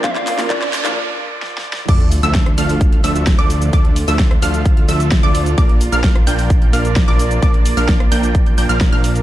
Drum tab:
CC |------------------------------------------------|x-----------------------------------------------|------------------------------------------------|------------------------------------------------|
HH |x--x--o--o--x-----o--x--------------------------|x--x--o--x--x--x--o--o--x--x--o--x--x--x--o--x--|x--x--o--o--x--x--o--x--x--x--o--x--x--x--o--x--|x--x--o--x--x--x--o--o--x--x--o--x--x--x--o--x--|
SH |x-----x--x--x-----x--x--------------------------|x-----x--x--x-----x--x--x-----x--x--x-----x--x--|x-----x--x--x-----x--x--x-----x--x--x-----x--x--|x-----x--x--x-----x--x--x-----x--x--x-----x--x--|
CP |x--x--x--x--x--x--x--x--------------------------|------------------------------------------------|------------------------------------------------|------------------------------------------------|
SD |------------------------------------o---o---o---|------------o--r--------------------o-----------|------------o--r--------------------o-----------|------------o--r--------------------o-----------|
BD |o-----------o-----------------------------------|o-----------o-----------o-----------o-----------|o-----------o-----------o-----------o-----------|o-----------o-----------o-----------o-----------|

CC |------------------------------------------------|
HH |x--x--o--o--x--x--o--x--x--x--o--x--x--x--o--x--|
SH |x-----x--x--x-----x--x--x-----x--x--x-----x--x--|
CP |------------------------------------------------|
SD |------------o--r--------------------o-----------|
BD |o-----------o-----------o-----------o-----------|